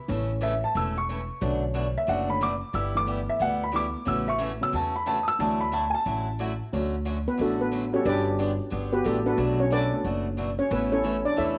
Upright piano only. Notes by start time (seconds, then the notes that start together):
0.08 E3 A3 C#4
0.43 E5
0.64 A5
0.77 E6
0.98 C#6
1.41 D3 A3 C#4
1.98 E5
2.09 F#5
2.29 D3 A3 C#4 B5
2.43 D6
2.75 E6
2.95 E3 A3 B3 D6
3.29 E5
3.42 F#5
3.64 B5
3.74 E3 A3 B3 D6
4.06 C#3 F#3 B3 E6
4.28 E5 C#6
4.61 C#3 F#3 B3 E6
4.75 A5
4.96 B5
5.07 A5
5.23 D#6
5.28 E6
5.39 E3 F#3 D4 A5
5.61 B5
5.74 A5
5.90 G#5
5.95 A5
6.73 F#3 A3 C#4 D4 F#4
7.93 G3 B3 D4 F#4 G4
9.26 A3 B3 D4 F#4 A4
9.92 A3 B3 D4 F#4 A4
11.04 E3 A3 C#4 E4 A4